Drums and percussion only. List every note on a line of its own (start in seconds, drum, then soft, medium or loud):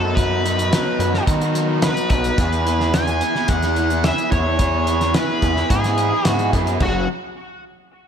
0.17 kick loud
0.17 closed hi-hat loud
0.46 closed hi-hat medium
0.59 closed hi-hat medium
0.73 snare loud
0.73 closed hi-hat loud
1.00 closed hi-hat medium
1.14 snare soft
1.27 kick loud
1.27 closed hi-hat loud
1.41 closed hi-hat medium
1.55 closed hi-hat medium
1.82 snare loud
1.82 closed hi-hat loud
1.97 closed hi-hat medium
2.10 kick medium
2.10 closed hi-hat medium
2.24 closed hi-hat medium
2.38 kick loud
2.38 closed hi-hat loud
2.53 closed hi-hat soft
2.67 closed hi-hat medium
2.81 snare soft
2.94 snare loud
2.94 closed hi-hat loud
3.07 closed hi-hat medium
3.21 closed hi-hat medium
3.35 snare soft
3.48 kick loud
3.48 closed hi-hat loud
3.62 snare soft
3.62 closed hi-hat soft
3.76 closed hi-hat medium
3.90 closed hi-hat medium
4.04 snare loud
4.04 closed hi-hat loud
4.18 closed hi-hat soft
4.32 kick loud
4.32 closed hi-hat medium
4.59 kick loud
4.59 closed hi-hat loud
4.87 closed hi-hat medium
5.01 snare soft
5.01 closed hi-hat soft
5.14 snare loud
5.14 closed hi-hat loud
5.42 kick medium
5.42 closed hi-hat medium
5.57 snare soft
5.70 kick loud
5.70 closed hi-hat loud
5.84 snare soft
5.84 closed hi-hat medium
5.98 closed hi-hat medium
6.25 snare loud
6.25 closed hi-hat loud
6.39 closed hi-hat medium
6.53 kick medium
6.53 closed hi-hat medium
6.67 closed hi-hat medium
6.80 kick loud
6.80 floor tom loud
6.80 crash medium